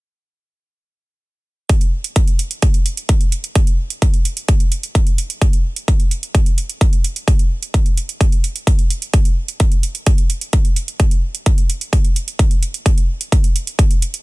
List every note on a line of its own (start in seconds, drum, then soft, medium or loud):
1.69 kick loud
1.69 closed hi-hat medium
1.81 closed hi-hat soft
2.04 closed hi-hat soft
2.16 kick loud
2.16 closed hi-hat medium
2.27 closed hi-hat soft
2.39 closed hi-hat medium
2.51 closed hi-hat soft
2.62 kick loud
2.62 closed hi-hat medium
2.74 closed hi-hat soft
2.86 closed hi-hat medium
2.97 closed hi-hat soft
3.09 kick loud
3.09 closed hi-hat medium
3.21 closed hi-hat soft
3.32 closed hi-hat medium
3.44 closed hi-hat soft
3.55 kick loud
3.55 closed hi-hat medium
3.67 closed hi-hat soft
3.90 closed hi-hat soft
4.02 kick loud
4.02 closed hi-hat medium
4.14 closed hi-hat soft
4.25 closed hi-hat medium
4.37 closed hi-hat soft
4.48 kick loud
4.48 closed hi-hat medium
4.60 closed hi-hat soft
4.72 closed hi-hat medium
4.83 closed hi-hat soft
4.95 kick loud
4.95 closed hi-hat medium
5.07 closed hi-hat soft
5.18 closed hi-hat medium
5.30 closed hi-hat soft
5.42 kick loud
5.42 closed hi-hat medium
5.53 closed hi-hat soft
5.76 closed hi-hat soft
5.88 kick loud
5.88 closed hi-hat medium
6.00 closed hi-hat soft
6.11 closed hi-hat medium
6.23 closed hi-hat soft
6.35 kick loud
6.35 closed hi-hat medium
6.46 closed hi-hat soft
6.58 closed hi-hat medium
6.69 closed hi-hat soft
6.81 kick loud
6.81 closed hi-hat medium
6.93 closed hi-hat soft
7.04 closed hi-hat medium
7.16 closed hi-hat soft
7.28 kick loud
7.28 closed hi-hat medium
7.39 closed hi-hat soft
7.63 closed hi-hat soft
7.74 kick loud
7.74 closed hi-hat medium
7.86 closed hi-hat soft
7.97 closed hi-hat medium
8.09 closed hi-hat soft
8.21 kick loud
8.21 closed hi-hat medium
8.32 closed hi-hat soft
8.44 closed hi-hat medium
8.56 closed hi-hat soft
8.67 kick loud
8.67 closed hi-hat medium
8.79 closed hi-hat soft
8.90 closed hi-hat medium
9.02 closed hi-hat soft
9.14 kick loud
9.14 closed hi-hat medium
9.25 closed hi-hat soft
9.48 closed hi-hat soft
9.60 kick loud
9.60 closed hi-hat medium
9.72 closed hi-hat soft
9.83 closed hi-hat medium
9.95 closed hi-hat soft
10.06 kick loud
10.06 closed hi-hat medium
10.18 closed hi-hat soft
10.30 closed hi-hat medium
10.41 closed hi-hat soft
10.53 kick loud
10.53 closed hi-hat medium
10.65 closed hi-hat soft
10.76 closed hi-hat medium
10.88 closed hi-hat soft
11.00 kick loud
11.00 closed hi-hat medium
11.11 closed hi-hat soft
11.35 closed hi-hat soft
11.46 kick loud
11.46 closed hi-hat medium
11.58 closed hi-hat soft
11.70 closed hi-hat medium
11.81 closed hi-hat soft
11.93 kick loud
11.93 closed hi-hat medium
12.04 closed hi-hat soft
12.16 closed hi-hat medium
12.28 closed hi-hat soft
12.39 kick loud
12.39 closed hi-hat medium
12.51 closed hi-hat soft
12.63 closed hi-hat medium
12.74 closed hi-hat soft
12.86 kick loud
12.86 closed hi-hat medium
12.98 closed hi-hat soft
13.21 closed hi-hat soft
13.32 kick loud
13.32 closed hi-hat medium
13.44 closed hi-hat soft
13.56 closed hi-hat medium
13.67 closed hi-hat soft
13.79 kick loud
13.79 closed hi-hat medium
13.91 closed hi-hat soft
14.02 closed hi-hat medium
14.14 closed hi-hat soft